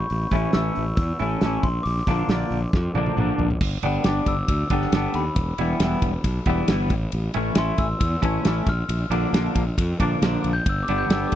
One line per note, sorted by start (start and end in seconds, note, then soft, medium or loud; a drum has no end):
0.00 0.56 C#6 medium
0.10 0.25 A1 medium
0.10 open hi-hat medium
0.31 0.45 A1 medium
0.31 0.52 E3 medium
0.31 0.53 A3 medium
0.31 0.53 C#4 medium
0.31 0.54 E4 loud
0.31 kick medium
0.31 open hi-hat soft
0.53 0.69 A1 medium
0.53 0.82 E3 medium
0.53 0.83 A3 medium
0.53 0.83 C#4 medium
0.53 0.83 E4 medium
0.53 0.95 E6 medium
0.53 snare loud
0.53 open hi-hat medium
0.75 0.91 A1 medium
0.75 open hi-hat soft
0.96 1.11 E2 medium
0.96 1.38 E6 medium
0.96 kick loud
0.96 open hi-hat medium
1.19 1.34 A1 medium
1.19 1.42 E3 medium
1.19 1.42 A3 medium
1.19 1.42 C#4 medium
1.19 1.42 E4 medium
1.19 open hi-hat soft
1.41 1.56 A1 medium
1.41 1.64 E3 medium
1.41 1.64 A3 medium
1.41 1.65 C#4 medium
1.41 1.65 E4 medium
1.41 snare loud
1.41 open hi-hat medium
1.63 1.77 A#1 medium
1.63 1.84 C6 medium
1.63 kick medium
1.63 open hi-hat soft
1.83 2.00 A#1 medium
1.83 3.12 D6 loud
1.83 open hi-hat medium
1.97 snare soft
2.07 2.21 A#1 medium
2.07 2.28 D3 medium
2.07 2.28 F3 medium
2.07 2.29 A#3 medium
2.07 2.30 D4 medium
2.07 kick medium
2.07 open hi-hat medium
2.28 2.43 A#1 medium
2.28 2.58 D3 medium
2.28 2.58 F3 medium
2.28 2.58 A#3 medium
2.28 2.59 D4 medium
2.28 snare loud
2.28 open hi-hat medium
2.50 2.65 A#1 medium
2.50 open hi-hat medium
2.73 2.88 F2 medium
2.73 kick loud
2.73 snare medium
2.95 3.09 A#1 medium
2.95 3.16 D3 medium
2.95 3.16 F3 medium
2.95 3.16 A#3 medium
2.95 3.17 D4 medium
2.95 high tom medium
3.06 high tom medium
3.17 3.31 A#1 medium
3.17 3.46 D3 medium
3.17 3.46 F3 medium
3.17 3.46 A#3 medium
3.17 3.46 D4 medium
3.17 mid tom medium
3.38 3.52 A#1 medium
3.38 floor tom medium
3.51 floor tom medium
3.61 3.75 G1 medium
3.61 kick loud
3.61 crash loud
3.83 3.97 G1 medium
3.83 4.03 D3 medium
3.83 4.04 G3 medium
3.83 4.04 B3 medium
3.83 4.05 D4 medium
3.83 ride medium
4.04 4.19 G1 medium
4.04 4.33 D3 medium
4.04 4.34 G3 medium
4.04 4.34 B3 medium
4.04 4.34 D4 medium
4.04 4.27 D6 medium
4.04 snare loud
4.04 ride medium
4.26 4.41 G1 medium
4.26 4.48 E6 medium
4.26 kick medium
4.26 ride medium
4.48 4.63 D2 medium
4.48 5.13 E6 medium
4.48 kick medium
4.48 ride medium
4.70 4.85 G1 medium
4.70 4.92 D3 medium
4.70 4.93 G3 medium
4.70 4.93 B3 medium
4.70 4.93 D4 medium
4.70 kick medium
4.70 ride medium
4.81 snare soft
4.92 5.06 G1 medium
4.92 5.22 D3 medium
4.92 5.22 G3 medium
4.92 5.22 B3 medium
4.92 5.22 D4 medium
4.92 snare loud
4.92 ride medium
5.14 5.28 D#2 medium
5.14 6.43 B5 medium
5.14 snare soft
5.14 ride medium
5.36 5.51 E1 medium
5.36 kick loud
5.36 ride medium
5.58 5.73 E1 medium
5.58 5.79 E3 medium
5.58 5.80 G3 medium
5.58 5.80 B3 medium
5.58 5.81 E4 loud
5.58 ride medium
5.80 5.94 E1 medium
5.80 6.09 E3 medium
5.80 6.09 G3 medium
5.80 6.10 B3 medium
5.80 6.10 E4 medium
5.80 snare loud
5.80 ride medium
6.02 6.16 E1 medium
6.02 kick medium
6.02 ride medium
6.24 6.39 B1 medium
6.24 kick medium
6.24 ride medium
6.46 6.60 E1 medium
6.46 6.68 E3 medium
6.46 6.68 G3 medium
6.46 6.68 B3 medium
6.46 6.69 E4 medium
6.46 kick medium
6.46 ride medium
6.68 6.91 G1 medium
6.68 6.91 E3 medium
6.68 6.91 G3 medium
6.68 6.91 B3 medium
6.68 6.91 E4 medium
6.68 snare loud
6.68 ride medium
6.90 7.05 A1 medium
6.90 kick medium
6.90 ride medium
7.12 7.27 A1 medium
7.12 ride medium
7.34 7.49 A1 medium
7.34 7.55 E3 medium
7.34 7.55 A3 medium
7.34 7.56 C#4 medium
7.34 7.56 E4 loud
7.34 ride medium
7.55 7.70 A1 medium
7.55 7.85 E3 medium
7.55 7.85 A3 medium
7.55 7.86 C#4 medium
7.55 7.86 E4 medium
7.55 7.79 C6 medium
7.55 snare loud
7.55 ride medium
7.78 7.93 A1 medium
7.78 7.99 E6 medium
7.78 kick medium
7.78 ride medium
8.00 8.15 E2 medium
8.00 8.65 E6 medium
8.00 kick medium
8.00 ride medium
8.22 8.37 A1 medium
8.22 8.43 E3 medium
8.22 8.44 A3 medium
8.22 8.44 C#4 medium
8.22 8.45 E4 medium
8.22 kick medium
8.22 ride medium
8.44 8.60 A1 medium
8.44 8.67 E3 medium
8.44 8.67 A3 medium
8.44 8.67 C#4 medium
8.44 8.68 E4 medium
8.44 snare loud
8.44 ride medium
8.66 8.81 A#1 medium
8.66 9.97 F6 medium
8.66 kick medium
8.66 snare soft
8.66 ride medium
8.89 9.03 A#1 medium
8.89 ride medium
9.10 9.25 A#1 medium
9.10 9.32 D3 medium
9.10 9.32 F3 medium
9.10 9.32 A#3 loud
9.10 9.32 D4 medium
9.10 ride medium
9.33 9.47 A#1 medium
9.33 9.62 D3 medium
9.33 9.62 F3 medium
9.33 9.62 A#3 medium
9.33 9.62 D4 medium
9.33 snare loud
9.33 ride medium
9.55 9.69 A#1 medium
9.55 kick medium
9.55 ride medium
9.78 9.92 F2 medium
9.78 kick medium
9.78 ride loud
10.00 10.14 A#1 medium
10.00 10.21 D3 medium
10.00 10.22 F3 medium
10.00 10.21 A#3 medium
10.00 10.22 D4 medium
10.00 kick medium
10.00 ride medium
10.22 10.36 A#1 medium
10.22 10.51 D3 medium
10.22 10.51 F3 medium
10.22 10.51 A#3 medium
10.22 10.52 D4 medium
10.22 snare loud
10.22 ride medium
10.44 10.58 A#1 medium
10.44 ride medium
10.53 10.67 G6 loud
10.66 10.80 G1 medium
10.66 11.35 D3 medium
10.66 11.35 B3 medium
10.66 11.35 G4 medium
10.66 11.35 B4 medium
10.66 10.82 E6 medium
10.66 kick loud
10.66 ride medium
10.83 10.96 D6 medium
10.88 11.03 G1 medium
10.88 11.09 D3 medium
10.88 11.10 G3 medium
10.88 11.10 B3 medium
10.88 11.11 D4 medium
10.88 ride medium
10.98 11.11 G6 medium
11.09 11.24 G1 medium
11.09 11.35 D3 medium
11.09 11.35 G3 medium
11.09 11.35 B3 medium
11.09 11.35 D4 medium
11.09 11.26 E6 medium
11.09 snare loud
11.09 ride medium
11.27 11.35 D6 medium
11.32 ride medium